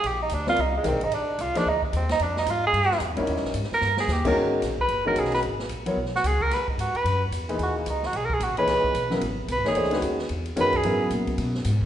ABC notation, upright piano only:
X:1
M:4/4
L:1/8
Q:"Swing" 1/4=222
K:Ebm
V:1 name="Upright piano"
z3 [=G,=CFB=d] z2 [E,A,=D=GB] z | z3 [F,B,EA=c] z4 | z6 z [=G,DE=EB]- | [=G,DE=EB]2 z4 z [_E,A,D_GB]- |
[K:G#m] [_E,_A,_D_G_B]2 z3 [^D,^G,CF^A]3 | z3 [F,B,EAc] z4 | z6 z [A,,E,DGB]- | [A,,E,DGB]2 z4 z [A,,E,DGc]- |
[A,,E,DGc]2 z [C,F,B,EA] z3 [E,A,DGc] | [E,=A,=D=G^B] [^D,^G,CF=B]2 z3 [D,G,CF^A] z | [C,F,B,EA]4- [C,F,B,EA] z3 |]